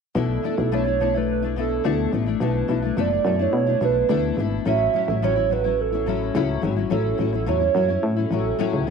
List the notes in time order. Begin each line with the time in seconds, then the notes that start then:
0.15 B1 B2 A3 D4 E4 A4
0.43 B2 A3 D4 E4
0.57 B1 A3 D4 E4
0.72 B2 A3 D4 E4 C#5
0.85 A3 D4 E4
1.00 B2 A3 D4 E4
1.14 A3 D4 E4 B4
1.31 B4
1.42 A3 D4 E4
1.56 B2 A3 D4 E4 A4
1.84 D2 B2 A3 D4 E4
2.12 A1 B2 A3 D4 E4
2.26 A3 D4 E4
2.40 B1 B2 A3 D4 E4 B4
2.68 B1 B2 A3 D4 E4
2.82 A3 D4 E4
2.97 F#1 B2 A3 D4 E4 D5
3.10 A3 D4 E4
3.25 F#2 B2 A3 D4 E4
3.39 A3 D4 E4 C#5
3.53 B2 C#5
3.67 A3 D4 E4
3.80 B1 B2 A3 D4 E4 B4
4.09 D2 B2 A3 D4 E4
4.37 G#1 B2 A3 D4 E4
4.65 A1 A2 F#3 C#4 E4 E5
4.93 A2 F#3 C#4 E4
5.08 A1 F#3 C#4 E4
5.22 A2 F#3 C#4 E4 C#5
5.36 F#3 C#4 E4
5.49 A2 F#3 C#4 E4 B4
5.64 F#3 C#4 E4
5.81 A4
5.92 F#3 C#4 E4
6.06 A2 F#3 C#4 E4
6.35 C#2 A2 F#3 C#4 E4
6.62 G#1 A2 F#3 C#4 E4
6.76 F#3 C#4 E4
6.90 A1 A2 F#3 C#4 E4 A4
7.18 A1 A2 F#3 C#4 E4
7.32 F#3 C#4 E4
7.46 E2 A2 F#3 C#4 E4 C#5
7.60 F#3 C#4 E4
7.74 F#2 A2 F#3 C#4 E4
7.88 F#3 C#4 E4
8.03 A2 A4
8.16 F#3 C#4 E4
8.31 A1 A2 F#3 C#4 E4
8.59 A2 F#3 C#4 E4
8.73 C#2
8.87 A2